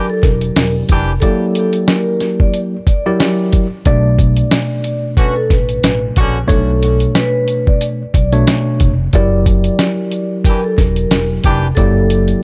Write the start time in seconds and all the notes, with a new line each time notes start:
Already playing: F#3 E4 G4 A#4 D5
0.10 A4
0.22 E1 A#4, kick, snare, closed hi-hat
0.41 closed hi-hat
0.56 E1, snare, closed hi-hat
0.89 F1 E3 D4 G4, kick, closed hi-hat
1.20 F#3 A#3 E4 G4 A4 D5, kick, closed hi-hat
1.55 closed hi-hat
1.73 closed hi-hat
1.88 A#4, snare, closed hi-hat
2.20 snare, closed hi-hat
2.40 D5, kick
2.54 closed hi-hat
2.87 D5, kick, closed hi-hat
3.06 F#3 E4 G4 A#4 D5
3.20 snare, closed hi-hat
3.53 kick, closed hi-hat
3.85 B1 B2 A3 D4 D5, kick, closed hi-hat
4.19 kick, closed hi-hat
4.37 closed hi-hat
4.51 snare, closed hi-hat
4.84 closed hi-hat
5.17 D3 C#4 F#4 B4, kick, closed hi-hat
5.36 A4
5.50 A1 B4, kick, snare, closed hi-hat
5.69 closed hi-hat
5.84 A1, snare, closed hi-hat
6.16 A#1 D3 C#4 F#4, kick, closed hi-hat
6.47 B1 B2 A3 D4 A4 C#5, kick, closed hi-hat
6.83 closed hi-hat
7.00 closed hi-hat
7.15 B4, snare, closed hi-hat
7.48 closed hi-hat
7.67 D5, kick
7.81 closed hi-hat
8.14 B1 D5, kick, closed hi-hat
8.32 B2 A3 D4 C#5, closed hi-hat
8.47 snare, closed hi-hat
8.80 F1, kick, closed hi-hat
9.13 F#1 F#3 E4 G4 A#4 D5, kick, closed hi-hat
9.46 kick, closed hi-hat
9.64 closed hi-hat
9.79 snare, closed hi-hat
10.12 closed hi-hat
10.44 E3 D4 G4 A#4, kick, closed hi-hat
10.64 A4
10.77 E1 A#4, kick, snare, closed hi-hat
10.96 closed hi-hat
11.11 E1, snare, closed hi-hat
11.44 F1 E3 D4 G4, kick, closed hi-hat
11.75 F#1 F#3 A#3 E4 G4 A4 D5, kick, closed hi-hat
12.10 closed hi-hat
12.28 closed hi-hat